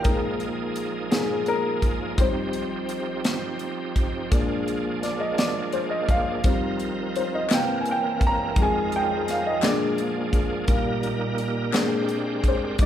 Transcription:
0.04 A#2 F3 G#3 A#3 D#4 G#4 A#4, kick, closed hi-hat
0.40 closed hi-hat
0.76 closed hi-hat
1.11 A#2 G#3 D#4 G#4, snare, closed hi-hat
1.46 A#4, closed hi-hat
1.82 kick, closed hi-hat
2.18 D#3 G3 C4 G4 C5, kick, closed hi-hat
2.53 closed hi-hat
2.89 closed hi-hat
3.24 snare, closed hi-hat
3.59 closed hi-hat
3.96 kick, closed hi-hat
4.30 A#2 G#3 A#3 D4 G#4, kick, closed hi-hat
4.68 closed hi-hat
5.03 D5, snare, closed hi-hat
5.20 D#5
5.38 D5, snare, closed hi-hat
5.72 C5, closed hi-hat
5.90 D#5
6.09 F5, kick, closed hi-hat
6.43 D#3 G3 C4 D#4 A#4, kick, closed hi-hat
6.79 closed hi-hat
7.16 C5, closed hi-hat
7.35 D#5
7.50 C3 E3 A#3 C4, snare, clap, closed hi-hat
7.54 G5
7.81 G#5
7.86 closed hi-hat
7.91 G5
8.21 kick, closed hi-hat
8.27 A#5
8.55 F2 F3 G#3 D#4, kick, closed hi-hat
8.59 D#3 G#3 G#5
8.92 G5, closed hi-hat
9.28 F5, snare, closed hi-hat
9.46 D#5
9.62 A#2 D3 G#3 A#3 D4 G#4 D5, snare, clap, closed hi-hat
9.98 closed hi-hat
10.33 kick, closed hi-hat
10.68 A#2 G3 A#3 D#4 A#4, kick, closed hi-hat
11.03 closed hi-hat
11.38 closed hi-hat
11.71 A#2 G#3 C4 D4 G4, snare, clap, closed hi-hat
12.09 closed hi-hat
12.44 kick, closed hi-hat
12.48 C5
12.79 D#3 G3 D4 F4, kick, closed hi-hat
12.83 D5

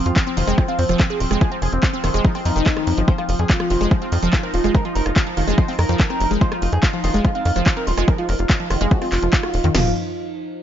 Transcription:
Already playing: F3 C4
0.06 F2 F4, closed hi-hat
0.16 C4, kick, cross-stick, clap, closed hi-hat
0.27 C4, closed hi-hat
0.37 F1 D#3 F4, open hi-hat
0.47 F1 G#3 C4, closed hi-hat
0.58 F3 C4, kick, cross-stick, closed hi-hat
0.68 C4 F4, closed hi-hat
0.79 F2 C4, open hi-hat
0.89 F1 F3 C4, cross-stick, closed hi-hat
1.00 C4, kick, clap, closed hi-hat
1.10 C4 G#4, closed hi-hat
1.20 D#1 C4, open hi-hat
1.31 F1 G#3 C4, cross-stick, closed hi-hat
1.41 F3 G#4, kick, closed hi-hat
1.52 F3 C4, closed hi-hat
1.62 F1 G#4, cross-stick, open hi-hat
1.72 F1 C4, closed hi-hat
1.83 C4, kick, clap, closed hi-hat
1.93 C4, closed hi-hat
2.04 F1 D#3 C4, cross-stick, open hi-hat
2.14 F1 G#3 C4, closed hi-hat
2.25 F3 D#4, kick, closed hi-hat
2.35 C4, cross-stick, open hi-hat
2.45 F2 F3 D#4, open hi-hat
2.56 F1 D#3, closed hi-hat
2.66 kick, clap, closed hi-hat
2.77 D#3, cross-stick, closed hi-hat
2.87 F2, open hi-hat
2.97 G#1 F3, closed hi-hat
3.08 F3 D#4 C5, kick, closed hi-hat
3.18 F3 F4, cross-stick, closed hi-hat
3.29 F1 F4, open hi-hat
3.39 F2 G#4, closed hi-hat
3.50 F4, kick, clap, closed hi-hat
3.60 F3 F4, cross-stick, closed hi-hat
3.70 F1 D#3 F4, open hi-hat
3.81 F1 G#3 F4, closed hi-hat
3.91 F3 F4, kick, cross-stick, closed hi-hat
4.02 C4 F4, closed hi-hat
4.12 F2 F4, open hi-hat
4.22 F1 F3 F4, closed hi-hat
4.33 F4, kick, cross-stick, clap, closed hi-hat
4.43 C4 A#4, closed hi-hat
4.54 D#1 F4, open hi-hat
4.64 F1 G#3 F4, cross-stick, closed hi-hat
4.75 F3 A#4, kick, closed hi-hat
4.85 F3 F4, closed hi-hat
4.95 F1 A#4, open hi-hat
5.06 F1 F4, cross-stick, closed hi-hat
5.16 F4, kick, clap, closed hi-hat
5.27 F3, closed hi-hat
5.37 F1 D#3 F4, cross-stick, open hi-hat
5.47 F1 G#3 F4, closed hi-hat
5.58 F3 C5, kick, closed hi-hat
5.68 C4 F4, open hi-hat
5.79 F2 A#4, cross-stick, open hi-hat
5.89 F2 F3, closed hi-hat
6.00 kick, clap, closed hi-hat
6.10 C4, cross-stick, closed hi-hat
6.20 F1, open hi-hat
6.31 F1 G#3, closed hi-hat
6.41 F3 C5, kick, closed hi-hat
6.52 F3 F4, cross-stick, closed hi-hat
6.62 F1 F4, open hi-hat
6.73 F2 G#4, closed hi-hat
6.83 F4, kick, cross-stick, clap, closed hi-hat
6.93 F3 F4, closed hi-hat
7.04 F1 D#3 F4, open hi-hat
7.14 F1 G#3 F4, closed hi-hat
7.25 F3 F4, kick, cross-stick, closed hi-hat
7.35 C4 F4, closed hi-hat
7.45 F2 F4, open hi-hat
7.56 F1 F3 F4, cross-stick, closed hi-hat
7.66 F4, kick, clap, closed hi-hat
7.77 C4 A#4, closed hi-hat
7.87 D#1 F4, open hi-hat
7.97 F1 G#3 F4, cross-stick, closed hi-hat
8.08 F3 A#4, kick, closed hi-hat
8.18 F3 F4, closed hi-hat
8.29 F1 A#4, cross-stick, open hi-hat
8.39 F1 F4, closed hi-hat
8.50 F4, kick, clap, closed hi-hat
8.60 F3, closed hi-hat
8.70 F1 D#3 F4, cross-stick, open hi-hat
8.81 F1 G#3 F4, closed hi-hat
8.91 F3 F#4, kick, closed hi-hat
9.02 C4 F4, cross-stick, open hi-hat
9.12 F1 F4, clap, open hi-hat
9.22 F1 F3, closed hi-hat
9.33 kick, clap, closed hi-hat
9.43 F#4, cross-stick, closed hi-hat
9.54 D#1, open hi-hat
9.64 F2 D#3, closed hi-hat
9.75 F1 F3 F4, snare, floor tom, crash

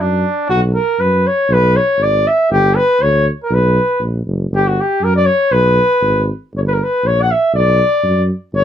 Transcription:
0.00 F#2 D4
0.49 B1 F#4
0.74 A#4
0.99 F#2 B4
1.27 C#5
1.49 B1 B4
1.76 C#5
1.98 G#1
2.03 D5
2.27 E5
2.50 G1 G4
2.76 B4
3.01 D2 C#5
3.43 A#4
3.50 B1 B4
4.00 A#1
4.26 F#1
4.51 G1
4.55 G4
4.67 F#4
4.80 G4
5.01 F#2 A#4
5.16 D5
5.25 C#5
5.51 B1 B4
6.02 G#1
6.54 G1 C#5
6.67 B4
6.73 A#4
6.83 B4
7.04 A#1 C#5
7.22 F#5
7.31 E5
7.54 B1 D5
8.03 F#2
8.53 G1 C#5

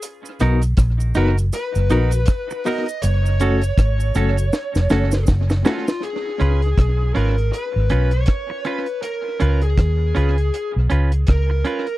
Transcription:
0.02 closed hi-hat, cabasa
0.25 cabasa
0.40 B1 B3 D#4 F#4 A#4, cross-stick, closed hi-hat, cabasa
0.62 closed hi-hat, cabasa
0.77 A#1, kick, cross-stick, closed hi-hat, cabasa
1.00 cabasa
1.14 F#1 B3 D#4 F#4 A#4 B4, closed hi-hat, cabasa
1.37 closed hi-hat, cabasa
1.53 B4, closed hi-hat, cabasa
1.75 F#1, cabasa
1.89 A#1 B3 D#4 F#4 A#4, closed hi-hat, cabasa
2.11 F#4 A#4, closed hi-hat, cabasa
2.26 kick, cross-stick, closed hi-hat, cabasa
2.50 muted clean electric guitar stroke, cabasa
2.64 B3 D#4 F#4 A#4 D#5, open hi-hat, cabasa
2.86 closed hi-hat, cabasa
3.02 F#1 C#5, closed hi-hat, cabasa
3.26 cabasa
3.40 A3 C#4 F#4 A4, closed hi-hat, cabasa
3.61 closed hi-hat, cabasa
3.78 G#1, kick, cross-stick, closed hi-hat, cabasa
4.00 cabasa
4.15 F#1 A3 C#4 F#4 A4, closed hi-hat, cabasa
4.37 F#4 A4, closed hi-hat, cabasa
4.53 snare, cabasa
4.75 F1, snare, cabasa
4.90 F#1 A3 C#4 F#4 A4, snare, cabasa
5.11 F#4 A4, snare, cabasa
5.27 F#1, kick, snare, cabasa
5.50 muted clean electric guitar stroke, snare, cabasa
5.65 A3 C#4 F4 F#4 A4, snare, cabasa
5.88 snare, cabasa
6.03 G#4, closed hi-hat
6.40 C#2 C#4 F4 B4, closed hi-hat
6.62 closed hi-hat
6.78 B1, kick, cross-stick, closed hi-hat
7.14 G#1 C#4 F4 A#4 B4, closed hi-hat
7.38 closed hi-hat
7.52 B4, closed hi-hat
7.76 G#1
7.90 B1 C#4 F4 B4, closed hi-hat
8.11 C#5, closed hi-hat
8.26 kick, cross-stick, closed hi-hat
8.50 muted clean electric guitar stroke
8.65 C#4 F4 B4, closed hi-hat
8.86 closed hi-hat
9.02 A#4, closed hi-hat
9.40 C#2 C#4 F4 B4, closed hi-hat
9.62 G#4, closed hi-hat
9.78 D#2, kick, cross-stick, closed hi-hat
10.15 C#2 C#4 F4 B4, closed hi-hat
10.38 closed hi-hat
10.54 closed hi-hat
10.76 B1
10.90 C#2 C#4 F4 B4, closed hi-hat
11.12 closed hi-hat
11.27 C#2 A#4, kick, cross-stick, closed hi-hat
11.50 muted clean electric guitar stroke
11.65 C#4 F4 B4, closed hi-hat
11.87 closed hi-hat

